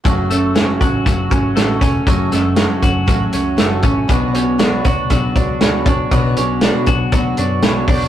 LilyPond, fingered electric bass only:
\new Staff \with { instrumentName = "Fingered electric bass" } { \clef bass \time 4/4 \key fis \minor \tempo 4 = 119 fis,,4. a,,8 fis,,8 gis,,8 a,,8 e,,8 | fis,,8 fis,,8. r16 fis,,8 a,,8 cis,8 fis,,8 a,,8 | b,,4. d,8 b,,8 cis,8 d,8 a,,8 | b,,8 b,,8. r16 b,,8 d,8 fis,8 b,,8 e,,8 | }